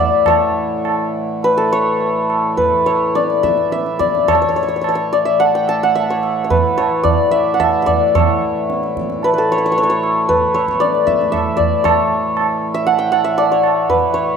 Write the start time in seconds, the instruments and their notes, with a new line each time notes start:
Already playing: harmonium A2 E3, santur A4 B4 D5 E5 F#5
0.26 santur C#5, tabla na, tabla ge
0.85 tabla na
1.43 santur B4, tabla tin
1.57 santur A4
1.72 santur C#5
2.00 tabla tin
2.30 tabla na
2.57 santur B4, tabla tin, tabla ge
2.86 santur C#5, tabla na
3.15 santur D5, tabla te
3.30 tabla te
3.43 santur E5, tabla ke
3.57 tabla te
3.72 santur E5, tabla te
3.86 tabla te
3.99 santur D5, tabla ke
4.15 tabla te
4.28 santur C#5, tabla na, tabla ge
4.35 santur C#5
4.42 santur C#5
4.49 santur C#5
4.56 santur C#5
4.63 santur C#5
4.68 santur C#5
4.76 santur C#5
4.81 santur C#5, tabla na
4.89 santur C#5
4.95 santur C#5
5.13 santur D5
5.25 santur E5
5.40 santur F#5, tabla tin
5.55 santur G5
5.68 santur A5, tabla na
5.83 santur F#5
5.95 santur E5, tabla tin
6.10 santur C#5
6.23 tabla na
6.44 santur C#5
6.50 santur B4, tabla tin, tabla ge
6.78 santur C#5, tabla na
7.03 santur D5, tabla tin, tabla ge
7.31 santur E5
7.54 santur F#5
7.60 santur E5, tabla na, tabla ge
7.82 santur E5
7.86 santur D5, tabla ge
8.15 harmonium A2 E3, santur C#5, tabla na, tabla ge
8.70 tabla te
8.83 tabla te
8.97 tabla ke
9.10 tabla te
9.23 santur B4, tabla tin
9.34 santur B4
9.38 santur A4
9.52 santur C#5
9.58 santur C#5
9.66 santur C#5
9.72 santur C#5
9.76 santur C#5, tabla tin
9.83 santur C#5
9.90 santur C#5
10.03 tabla na
10.29 santur B4, tabla tin, tabla ge
10.54 santur C#5, tabla na
10.68 tabla ke
10.80 santur D5, tabla te
10.95 tabla te
11.07 santur E5, tabla ke
11.21 tabla te
11.32 santur E5, tabla na, tabla ge
11.57 santur D5, tabla ge
11.84 santur C#5, tabla na, tabla ge
12.37 tabla na
12.74 santur E5
12.87 santur F#5, tabla tin
12.99 santur G5
13.12 santur F#5, tabla na
13.24 santur E5
13.38 santur D5, tabla tin
13.52 santur C#5
13.64 tabla na
13.89 santur B4, tabla tin, tabla ge
14.14 santur C#5